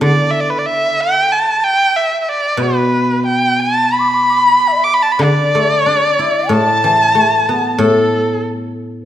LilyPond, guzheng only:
\new Staff \with { instrumentName = "Guzheng" } { \clef bass \time 2/4 \tempo 4 = 93 <d e b e'>2~ | <d e b e'>4 r4 | b,2~ | b,4 r4 |
d8 a8 d'8 e'8 | a,8 e8 a8 b8 | a,2 | }